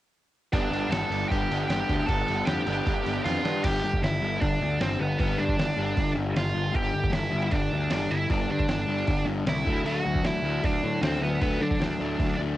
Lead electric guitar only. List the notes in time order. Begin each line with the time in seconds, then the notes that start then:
0.53 D4 D5
0.91 A4 A5
1.28 G4 G5
1.68 G4 G5
2.06 A4 A5
2.45 G4 G5
3.24 F4 F5
3.64 G4 G5
4.04 E4 E5
4.40 D4 D5
4.82 C4 C5
5.01 B3 B4
5.20 B3 B4
5.39 D4 D5
6.37 F4 F5
6.75 G4 G5
7.13 E4 E5
7.52 D4 D5
7.92 D4 D5
8.11 E4 E5
8.31 D4 D5
8.51 D4 D5
9.48 E4 E5
9.87 F#4 F#5
10.26 E4 E5
10.65 D4 D5
11.03 C4 C5
11.23 B3 B4
11.42 B3 B4
11.61 D4 D5